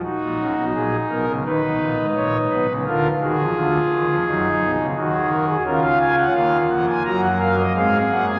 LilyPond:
<<
  \new Staff \with { instrumentName = "Pipe organ" } { \time 4/4 \key ees \minor \tempo 4 = 86 << { ges'4 aes'8 bes'8 ces''4 des''8 ces''8 | bes'8 aes'2~ aes'8 ges'16 aes'16 bes'16 aes'16 | bes'16 f''16 aes''16 ges''16 f''8 ges''16 aes''16 bes''16 ges''16 f''16 ees''16 f''8 ges''16 aes''16 | } \\ { ees'2 ees'2 | f'8 ges'8 f'4 ees'4 r4 | f'2 ges'8 bes'8 aes'4 | } >> }
  \new Staff \with { instrumentName = "Pipe organ" } { \clef bass \time 4/4 \key ees \minor << { r1 | r1 | des'4 bes2 c'8 bes8 | } \\ { r16 <bes,, bes,>16 <des, des>16 <ces, ces>16 <bes,, bes,>8 <ces, ces>16 <des, des>16 <ees, ees>16 <ces, ces>16 <bes,, bes,>16 <aes,, aes,>16 <bes,, bes,>8 <ces, ces>16 <des, des>16 | <d, d>8 <ees, ees>16 <f, f>16 <d, d>8 <ees, ees>16 <f, f>16 <ges, ges>8 <ces, ces>16 <des, des>16 <ees, ees>4 | <des, des>4 <ees, ees>8 <f, f>8 <ges, ges>4 <aes, aes>8 <ges, ges>8 | } >> }
>>